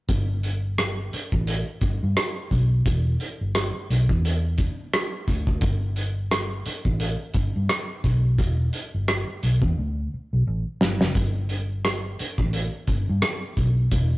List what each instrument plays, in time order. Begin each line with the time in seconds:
0.09 fingered electric bass G1, kick, closed hi-hat
0.43 closed hi-hat
0.78 cross-stick, closed hi-hat
1.13 muted fingered electric bass stroke, closed hi-hat
1.32 fingered electric bass A1, kick
1.47 closed hi-hat
1.81 fingered electric bass G1, kick, closed hi-hat
2.03 fingered electric bass G2
2.17 cross-stick, closed hi-hat
2.51 fingered electric bass B1, kick, closed hi-hat
2.86 fingered electric bass E1, kick, closed hi-hat
3.20 closed hi-hat
3.41 fingered electric bass G1
3.55 cross-stick, closed hi-hat
3.90 fingered electric bass B1, closed hi-hat
4.09 fingered electric bass E2, kick
4.25 closed hi-hat
4.58 kick, closed hi-hat
4.94 cross-stick, closed hi-hat
5.28 fingered electric bass D2, kick, cross-stick, closed hi-hat
5.47 kick
5.61 fingered electric bass G1, kick, closed hi-hat
5.96 closed hi-hat
6.31 cross-stick, closed hi-hat
6.66 muted fingered electric bass stroke, closed hi-hat
6.85 fingered electric bass A1, kick
7.00 closed hi-hat
7.34 fingered electric bass G1, kick, closed hi-hat
7.56 fingered electric bass G2
7.69 cross-stick, closed hi-hat
8.04 fingered electric bass B1, kick, cross-stick, closed hi-hat
8.38 fingered electric bass E1, kick, closed hi-hat
8.73 closed hi-hat
8.94 fingered electric bass G1
9.08 cross-stick, closed hi-hat
9.43 fingered electric bass B1, closed hi-hat
9.62 fingered electric bass E2, kick
9.78 fingered electric bass D2
10.14 muted fingered electric bass stroke
10.33 fingered electric bass B1
10.47 fingered electric bass A1
10.81 fingered electric bass G1, snare
11.01 fingered electric bass F#1, snare
11.15 fingered electric bass G1, kick, closed hi-hat
11.49 closed hi-hat
11.85 cross-stick, closed hi-hat
12.19 muted fingered electric bass stroke, closed hi-hat
12.38 fingered electric bass A1, kick, cross-stick
12.53 closed hi-hat
12.87 fingered electric bass G1, kick, closed hi-hat
13.09 fingered electric bass G2
13.22 cross-stick, closed hi-hat
13.57 fingered electric bass B1, kick, closed hi-hat
13.91 fingered electric bass E1, kick, closed hi-hat